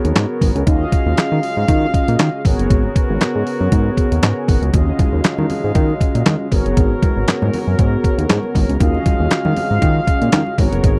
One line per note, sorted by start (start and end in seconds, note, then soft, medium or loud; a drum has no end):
0.00 0.63 C#3 medium
0.00 0.63 F#3 loud
0.00 0.62 B3 medium
0.00 0.65 B3 medium
0.00 0.62 F#4 medium
0.00 0.63 G#4 medium
0.00 0.63 A#4 medium
0.00 0.65 A#4 medium
0.00 0.63 C#5 medium
0.05 0.13 D#2 loud
0.05 closed hi-hat medium
0.16 0.26 G#2 loud
0.16 snare loud
0.16 clap medium
0.16 closed hi-hat loud
0.41 0.52 G#1 loud
0.41 kick loud
0.41 open hi-hat medium
0.55 0.64 C#2 loud
0.55 closed hi-hat medium
0.66 0.85 D#2 loud
0.66 6.47 C#3 medium
0.66 2.43 F#3 medium
0.66 2.43 G#3 medium
0.66 2.41 C#4 medium
0.66 2.41 F4 medium
0.66 2.41 F#4 medium
0.66 2.42 G#4 medium
0.66 2.42 D#5 medium
0.66 2.43 F5 loud
0.66 kick loud
0.66 closed hi-hat loud
0.92 kick loud
0.92 closed hi-hat medium
1.06 1.14 D#2 medium
1.17 snare loud
1.17 clap loud
1.17 closed hi-hat loud
1.32 1.40 D#3 loud
1.43 open hi-hat medium
1.57 1.65 G#2 loud
1.68 1.87 D#3 loud
1.68 kick loud
1.68 closed hi-hat medium
1.94 kick medium
1.94 closed hi-hat medium
2.08 2.16 A#2 loud
2.08 closed hi-hat medium
2.19 2.30 D#3 loud
2.19 snare loud
2.19 clap loud
2.19 closed hi-hat loud
2.44 2.55 G#1 loud
2.44 4.69 B3 medium
2.44 4.71 B3 medium
2.44 4.71 F#4 loud
2.44 4.69 F#4 medium
2.44 4.70 G#4 medium
2.44 4.71 A#4 medium
2.44 4.70 A#4 medium
2.44 4.70 C#5 medium
2.44 kick loud
2.44 open hi-hat medium
2.59 2.67 F#1 medium
2.59 closed hi-hat medium
2.70 2.89 G#1 medium
2.70 kick loud
2.70 closed hi-hat loud
2.96 kick loud
2.96 closed hi-hat medium
3.10 3.18 G#1 loud
3.21 3.27 G#2 soft
3.21 snare loud
3.21 clap loud
3.21 closed hi-hat loud
3.35 3.43 G#2 medium
3.47 open hi-hat medium
3.61 3.69 F#2 loud
3.72 3.90 G#2 loud
3.72 kick loud
3.72 closed hi-hat medium
3.97 kick medium
3.97 closed hi-hat medium
4.12 4.20 D#2 medium
4.12 closed hi-hat medium
4.23 4.33 G#2 loud
4.23 4.36 A#5 medium
4.23 snare loud
4.23 clap loud
4.23 closed hi-hat loud
4.37 4.48 G#5 medium
4.48 4.58 G#1 loud
4.48 4.62 F#5 medium
4.48 kick loud
4.48 open hi-hat medium
4.62 4.70 C#2 loud
4.62 4.74 D#5 medium
4.62 closed hi-hat medium
4.73 4.92 D#2 loud
4.73 6.50 F#3 medium
4.73 6.50 G#3 medium
4.73 6.48 C#4 medium
4.73 6.48 F4 medium
4.73 6.48 F#4 medium
4.73 6.48 G#4 medium
4.73 6.49 D#5 medium
4.73 6.50 F5 medium
4.73 kick loud
4.73 closed hi-hat loud
4.73 muted conga soft
4.73 low conga medium
4.99 kick loud
4.99 closed hi-hat medium
4.99 high conga medium
5.13 5.21 D#2 loud
5.24 5.30 D#3 medium
5.24 snare loud
5.24 clap loud
5.24 closed hi-hat loud
5.24 muted conga soft
5.38 5.47 D#3 loud
5.38 high conga medium
5.50 open hi-hat medium
5.50 low conga medium
5.64 5.72 G#2 loud
5.75 5.94 D#3 loud
5.75 kick loud
5.75 closed hi-hat medium
5.75 muted conga soft
5.90 muted conga soft
6.01 kick medium
6.01 closed hi-hat medium
6.15 6.23 A#2 medium
6.15 closed hi-hat medium
6.26 6.36 D#3 loud
6.26 snare loud
6.26 clap loud
6.26 closed hi-hat loud
6.26 muted conga soft
6.26 high conga medium
6.51 6.62 G#1 loud
6.51 8.78 C#3 medium
6.51 8.76 B3 medium
6.51 8.78 B3 medium
6.51 8.76 F#4 medium
6.51 8.78 F#4 loud
6.51 8.76 G#4 medium
6.51 8.78 A#4 medium
6.51 8.77 A#4 medium
6.51 8.77 C#5 medium
6.51 kick loud
6.51 open hi-hat medium
6.51 low conga medium
6.66 6.74 F#1 medium
6.66 closed hi-hat soft
6.77 6.95 G#1 medium
6.77 kick loud
6.77 closed hi-hat loud
6.77 muted conga soft
6.77 low conga medium
7.03 kick loud
7.03 closed hi-hat medium
7.03 high conga medium
7.17 7.25 G#1 medium
7.28 7.33 G#2 soft
7.28 snare loud
7.28 clap loud
7.28 closed hi-hat loud
7.28 muted conga soft
7.42 7.50 G#2 loud
7.42 high conga medium
7.54 open hi-hat medium
7.54 low conga medium
7.67 7.75 F#2 loud
7.79 7.97 G#2 loud
7.79 kick loud
7.79 closed hi-hat medium
7.79 muted conga soft
8.04 kick medium
8.04 closed hi-hat medium
8.18 8.26 D#2 loud
8.18 closed hi-hat medium
8.29 8.40 G#2 loud
8.29 snare loud
8.29 clap loud
8.29 closed hi-hat loud
8.29 muted conga soft
8.29 high conga medium
8.43 muted conga soft
8.55 8.65 G#1 loud
8.55 kick loud
8.55 open hi-hat medium
8.55 low conga medium
8.69 8.77 C#2 loud
8.69 closed hi-hat medium
8.80 8.99 D#2 loud
8.80 10.57 C#3 medium
8.80 10.57 F#3 medium
8.80 10.57 G#3 medium
8.80 10.55 C#4 medium
8.80 10.55 F4 medium
8.80 10.55 F#4 medium
8.80 10.55 G#4 medium
8.80 10.55 D#5 medium
8.80 10.57 F5 medium
8.80 kick loud
8.80 closed hi-hat loud
8.80 muted conga soft
8.80 low conga medium
8.95 muted conga soft
9.06 kick loud
9.06 closed hi-hat medium
9.06 high conga medium
9.20 9.28 D#2 loud
9.31 snare loud
9.31 clap loud
9.31 closed hi-hat loud
9.31 muted conga soft
9.45 9.53 D#3 loud
9.45 muted conga soft
9.45 high conga medium
9.57 open hi-hat medium
9.57 low conga medium
9.71 9.79 G#2 medium
9.82 10.00 D#3 loud
9.82 kick loud
9.82 closed hi-hat medium
9.82 muted conga soft
10.07 kick medium
10.07 closed hi-hat medium
10.22 10.30 A#2 loud
10.22 closed hi-hat medium
10.32 10.43 D#3 loud
10.32 snare loud
10.32 clap medium
10.32 closed hi-hat loud
10.32 muted conga soft
10.32 high conga medium
10.47 muted conga soft
10.58 10.69 G#1 loud
10.58 10.99 C#3 medium
10.58 10.99 B3 medium
10.58 10.99 F#4 medium
10.58 10.99 F#4 loud
10.58 10.99 G#4 medium
10.58 10.99 A#4 medium
10.58 10.99 C#5 loud
10.58 kick loud
10.58 open hi-hat medium
10.58 low conga medium
10.73 10.81 F#1 medium
10.73 closed hi-hat medium
10.83 10.99 G#1 loud
10.83 kick loud
10.83 closed hi-hat loud
10.83 muted conga soft
10.83 low conga medium